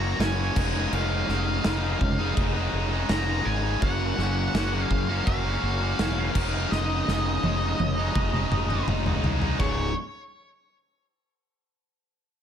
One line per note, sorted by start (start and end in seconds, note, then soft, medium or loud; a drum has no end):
0.00 0.13 F#1 medium
0.00 0.21 A#3 medium
0.00 0.22 C#4 medium
0.00 0.22 F#4 medium
0.00 0.23 A#5 loud
0.05 0.20 F#3 medium
0.19 0.49 F#1 medium
0.19 0.54 F#2 loud
0.19 0.55 C#3 loud
0.19 0.40 F#3 loud
0.19 0.39 A#3 loud
0.19 0.39 C#4 loud
0.19 0.93 G#5 loud
0.19 snare loud
0.19 crash medium
0.23 0.37 F#4 loud
0.38 0.56 F#3 medium
0.38 0.55 A#3 medium
0.38 0.62 C#4 medium
0.38 0.54 F#4 medium
0.56 0.86 F1 medium
0.56 0.91 C#2 loud
0.56 0.92 G#2 loud
0.56 0.76 C#3 loud
0.56 0.74 G#3 loud
0.56 0.73 D#4 loud
0.56 kick loud
0.56 crash loud
0.74 0.93 C#3 medium
0.74 0.94 G#3 medium
0.74 0.94 D#4 medium
0.92 1.22 F1 loud
0.92 1.63 C#2 loud
0.92 1.26 G#2 loud
0.92 1.28 C#3 loud
0.92 1.29 G#3 loud
0.92 1.30 D#4 loud
0.92 2.34 F5 medium
0.92 crash medium
1.28 1.58 F1 medium
1.28 1.64 G#2 medium
1.28 1.65 C#3 medium
1.28 1.65 G#3 medium
1.28 1.66 D#4 medium
1.28 snare soft
1.64 1.95 F1 loud
1.64 2.19 C#2 medium
1.64 2.00 G#2 loud
1.64 1.84 C#3 loud
1.64 1.83 G#3 loud
1.64 1.81 D#4 loud
1.64 snare loud
1.64 crash medium
1.82 2.00 C#3 medium
1.82 2.01 G#3 medium
1.82 2.01 D#4 medium
2.01 2.31 F1 loud
2.01 muted distorted electric guitar stroke soft
2.01 kick loud
2.19 2.57 C#3 medium
2.19 2.55 G#3 medium
2.19 2.53 D#4 medium
2.37 2.67 F1 loud
2.37 kick loud
2.37 crash medium
2.54 2.93 C#3 medium
2.54 2.92 G#3 medium
2.54 2.90 D#4 medium
2.73 3.03 F1 medium
2.91 3.10 C#3 medium
2.91 3.10 G#3 medium
2.91 3.11 D#4 medium
3.09 3.39 F1 loud
3.09 3.64 C#2 loud
3.09 3.43 G#2 loud
3.09 3.29 C#3 loud
3.09 3.27 G#3 loud
3.09 3.25 D#4 loud
3.09 3.47 A#5 loud
3.09 snare loud
3.09 crash medium
3.27 3.44 C#3 medium
3.27 3.45 G#3 medium
3.27 3.46 D#4 medium
3.44 3.75 G#1 loud
3.44 3.79 G#2 medium
3.44 3.65 C#3 medium
3.44 3.63 G#3 medium
3.44 3.62 D#4 medium
3.44 3.82 G#5 loud
3.63 3.81 C#3 medium
3.63 3.80 G#3 medium
3.63 3.79 D#4 medium
3.81 4.11 F#1 loud
3.81 4.53 F#2 loud
3.81 4.54 C#3 loud
3.81 4.17 F#3 loud
3.81 4.18 A#3 loud
3.81 4.20 C#4 loud
3.81 4.20 F#4 loud
3.81 4.78 F#5 loud
3.81 kick loud
3.81 crash medium
4.18 4.47 F#1 medium
4.18 4.54 F#3 medium
4.18 4.55 A#3 medium
4.18 4.56 C#4 medium
4.18 4.56 F#4 medium
4.18 snare soft
4.54 4.83 F#1 loud
4.54 5.08 F#2 medium
4.54 5.09 C#3 loud
4.54 4.74 F#3 loud
4.54 4.74 A#3 loud
4.54 4.73 C#4 loud
4.54 4.71 F#4 loud
4.54 snare loud
4.54 crash medium
4.73 4.90 F#3 medium
4.73 4.90 A#3 medium
4.73 4.92 C#4 medium
4.73 4.91 F#4 medium
4.78 5.27 F5 loud
4.90 5.20 F#1 loud
4.90 muted distorted electric guitar stroke medium
4.90 kick loud
5.09 5.47 F#3 medium
5.09 5.46 A#3 medium
5.09 5.46 C#4 medium
5.09 5.44 F#4 medium
5.27 5.56 F#1 loud
5.27 6.76 F5 loud
5.27 kick loud
5.27 crash medium
5.45 5.83 F#3 medium
5.45 5.82 A#3 medium
5.45 5.81 C#4 medium
5.45 5.80 F#4 medium
5.63 5.92 F#1 loud
5.81 5.98 F#3 medium
5.81 5.99 A#3 medium
5.81 6.00 C#4 medium
5.81 6.00 F#4 medium
5.98 6.28 E1 loud
5.98 6.32 F#2 medium
5.98 6.33 C#3 loud
5.98 6.19 F#3 loud
5.98 6.18 A#3 loud
5.98 6.18 C#4 loud
5.98 6.16 F#4 loud
5.98 snare loud
5.98 crash medium
6.17 6.34 F#3 medium
6.17 6.34 A#3 medium
6.17 6.41 C#4 medium
6.17 6.33 F#4 medium
6.35 6.64 F1 loud
6.35 6.70 C#2 medium
6.35 6.71 G#2 medium
6.35 6.55 C#3 loud
6.35 6.53 G#3 medium
6.35 6.52 D#4 loud
6.35 kick loud
6.35 crash loud
6.53 6.71 C#3 medium
6.53 6.72 G#3 medium
6.53 6.73 D#4 medium
6.71 7.01 F1 loud
6.71 7.42 C#2 loud
6.71 7.06 G#2 loud
6.71 7.07 C#3 loud
6.71 7.08 G#3 loud
6.71 7.09 D#4 loud
6.71 8.84 D#5 medium
6.71 snare medium
7.07 7.37 F1 medium
7.07 7.43 G#2 medium
7.07 7.44 C#3 medium
7.07 7.44 G#3 medium
7.07 7.45 D#4 medium
7.07 snare medium
7.43 7.72 F1 loud
7.43 7.97 C#2 medium
7.43 7.79 G#2 loud
7.43 7.63 C#3 loud
7.43 7.62 G#3 loud
7.43 7.60 D#4 loud
7.43 high tom medium
7.61 7.79 C#3 medium
7.61 7.79 G#3 medium
7.61 7.80 D#4 medium
7.79 8.09 F1 loud
7.79 muted distorted electric guitar stroke soft
7.79 high tom medium
7.97 8.35 C#3 medium
7.97 8.34 G#3 medium
7.97 8.32 D#4 medium
8.15 8.45 F1 loud
8.15 kick loud
8.15 mid tom loud
8.33 8.71 C#3 medium
8.33 8.70 G#3 medium
8.33 8.68 D#4 medium
8.33 mid tom medium
8.51 8.81 F1 medium
8.51 mid tom loud
8.69 8.87 C#3 medium
8.69 8.88 G#3 medium
8.69 8.89 D#4 medium
8.69 mid tom medium
8.87 9.17 F1 loud
8.87 9.41 C#2 loud
8.87 9.22 G#2 loud
8.87 9.07 C#3 medium
8.87 9.06 G#3 loud
8.87 9.04 D#4 loud
8.87 mid tom loud
9.06 9.23 C#3 medium
9.06 9.24 G#3 medium
9.06 9.25 D#4 medium
9.06 floor tom loud
9.23 9.53 C2 loud
9.23 9.57 G#2 medium
9.23 9.43 C#3 medium
9.23 9.42 G#3 medium
9.23 9.40 D#4 medium
9.23 floor tom loud
9.41 9.59 C#3 medium
9.41 9.58 G#3 medium
9.41 9.57 D#4 medium
9.41 floor tom loud
9.59 9.93 C#1 medium
9.59 9.88 C#2 loud
9.59 9.89 G#2 loud
9.59 9.89 C#3 loud
9.59 9.93 C#5 medium
9.59 kick loud
9.59 china medium